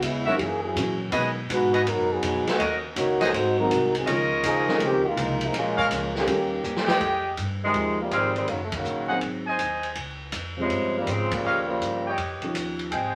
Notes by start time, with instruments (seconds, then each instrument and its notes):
0.00 upright bass E2, hollow-body jazz guitar C#3 G#3 B3 E4, trombone section G#3 B3 C#4 E4, kick, hi-hat pedal, ride
0.25 upright piano E3 F#3 A#3 C#4 D#4, trumpet section F#4 A#4 C#5 E5
0.36 hollow-body jazz guitar F#2 E3 A#3, upright bass F#2, trombone section G4, kick, ride
0.40 trombone section E3 A#3 C#4 G#4, hollow-body jazz guitar C#4
0.64 trombone section F#3 C#4 E4 G#4
0.74 hollow-body jazz guitar F#2 E3 A#3 C#4, upright bass A#2, upright piano E3 F#3 A#3 C#4 F#4, kick, hi-hat pedal, ride
1.11 hollow-body jazz guitar B2 F#3 G#3 D#4, upright bass B2, upright piano D#3 F#3 G#3 B3 F#4, trumpet section F#4 G#4 B4 D#5, kick, ride
1.48 upright bass G#2, hollow-body jazz guitar B2 F#3 G#3 D#4, trombone section G#3 D#4 F#4 B4, kick, hi-hat pedal, ride
1.73 trumpet section F#4 G#4 B4 D#5, ride
1.85 upright bass F#2, hollow-body jazz guitar B2 F#3 G#3 D#4, trombone section F#3 B3 D#4 A#4, kick, ride
2.10 trombone section F#3 B3 D#4 G#4
2.22 upright bass F2, hollow-body jazz guitar B2 F#3 G#3 D#4, kick, hi-hat pedal, ride
2.47 trombone section D#3 G#3 B3 F#4, muted upright bass stroke, snare, ride
2.59 upright bass D#2, hollow-body jazz guitar D#3 A#3 C#4 F#4, trumpet section F#4 A#4 C#5 D#5, kick, ride
2.95 upright bass C#2, hollow-body jazz guitar D#3 A#3 C#4 F#4, trombone section A#3 D#4 F#4 C#5, kick, hi-hat pedal, ride
3.19 trumpet section F#4 G#4 C5 D#5, snare, ride
3.32 upright bass G#1, hollow-body jazz guitar G#2 F#3 C4 D#4, trombone section G#3 D#4 F#4 C5, kick, ride
3.57 upright piano D#3 F#3 G#3 C4 F#4, trombone section G#3 D#4 F#4 A#4
3.69 upright bass C2, hollow-body jazz guitar G#2 F#3 C4 D#4, kick, hi-hat pedal, ride
3.95 trombone section F#3 C4 D#4 G#4, ride
4.05 upright bass C#2, hollow-body jazz guitar C#3 F3 A#3 D#4, upright piano D#3 G#3 A#3 C#4, trumpet section F4 A#4 C#5 D#5, kick, ride
4.09 upright piano F4
4.42 upright bass D#2, hollow-body jazz guitar C#3 F3 A#3 D#4, trombone section F3 A#3 D#4 G#4, kick, hi-hat pedal, ride
4.67 upright piano D#3 G#3 A#3 C#4 F4, snare
4.78 upright bass C#2, hollow-body jazz guitar C#3 F3 A#3, kick, ride
4.82 trombone section D#3 G#3 C4 G4, hollow-body jazz guitar D#4
5.07 trombone section G#3 A#3 D#4 F4
5.16 upright bass C2, hollow-body jazz guitar C#3 F3 A#3 D#4, kick, hi-hat pedal, ride
5.41 ride
5.45 trombone section F3 G#3 A#3 D#4
5.52 upright bass A#1, hollow-body jazz guitar A#2 F3 G#3 C#4, kick, ride
5.57 trombone section G#3 A#3 C#4 F4
5.76 trumpet section G#4 A#4 C#5 F5, kick
5.89 upright bass C#2, hollow-body jazz guitar A#2 F3 G#3 C#4, kick, hi-hat pedal, ride
6.15 trombone section D#3 A#3 C#4 G4, snare
6.26 upright bass D#2, hollow-body jazz guitar D#3 A#3 C#4 G4, upright piano D#3 G3 A#3 C#4 G4, kick, ride
6.63 upright bass E2, hollow-body jazz guitar D#3 A#3 C#4 G4, hi-hat pedal
6.76 snare
6.87 trumpet section G4 G#4 D#5 G5, snare
7.01 upright bass F2, kick, ride
7.37 upright bass G2, kick, hi-hat pedal, ride
7.64 saxophone section C3 D#3 G#3
7.74 upright bass D#2, upright piano F3 G#3 D#4 G4, kick, ride
8.01 saxophone section C3 D#3 G3 A#3
8.11 upright bass G#1, saxophone section D#3 G3 G#3 C4, trumpet section G4 G#4 D#5 F5, kick, hi-hat pedal, ride
8.36 saxophone section D#3 G3 G#3 C4, ride
8.48 upright bass F#1, saxophone section C#3 D#3 F#3 A#3, kick, ride
8.63 saxophone section A3
8.72 saxophone section C#3 D#3 F#3 A#3, kick, ride
8.85 upright bass A#1, hi-hat pedal
9.08 upright piano F#3 C4 D#4 G#4, trumpet section G#4 C5 D#5 F#5
9.21 upright bass G#1, kick, ride
9.46 trumpet section G#4 C5 D#5 G#5
9.58 upright bass D#2, kick, hi-hat pedal, ride
9.83 ride
9.95 upright bass C#2, kick, ride
10.32 upright bass F2, kick, hi-hat pedal, ride
10.57 saxophone section C#3, upright piano F3 C4 F4 G#4
10.61 saxophone section C3 F3 G#3
10.70 upright bass G2, kick, ride
10.98 saxophone section C3 D#3 G3 A#3
11.07 upright bass G#2, saxophone section C#3 F3 G#3 C4, kick, hi-hat pedal, ride
11.31 saxophone section C#3 F3 G3 A#3, kick, ride
11.43 upright bass D#2, trumpet section G4 C#5 D#5 F5
11.68 saxophone section C#3 F3 G3 A#3
11.81 upright bass G2, kick, hi-hat pedal, ride
12.06 trumpet section G4 C#5 D#5 G5
12.18 upright bass F2, kick, ride
12.42 upright piano F3 C#4 D#4 G4, muted upright bass stroke, ride
12.54 upright bass D#2, kick, hi-hat pedal, ride
12.79 ride
12.91 upright bass G#1, hollow-body jazz guitar G#2 G3 C4, trumpet section G#4 C5 D#5 G5, kick, ride
12.95 hollow-body jazz guitar D#4